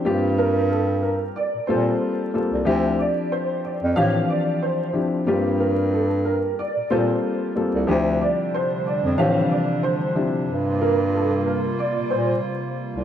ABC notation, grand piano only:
X:1
M:4/4
L:1/8
Q:"Swing 16ths" 1/4=92
K:Gdor
V:1 name="Grand piano"
[G,B,CFG]4 z [G,B,CFA]2 [G,B,CFA] | [F,CDEG]4 [E,F,CDG]3 [F,CDEG] | [G,B,CFG]4 z [G,B,CFA]2 [G,B,CFA] | [F,CDEG]4 [E,F,CDG]3 [F,CDEG] |
z8 |]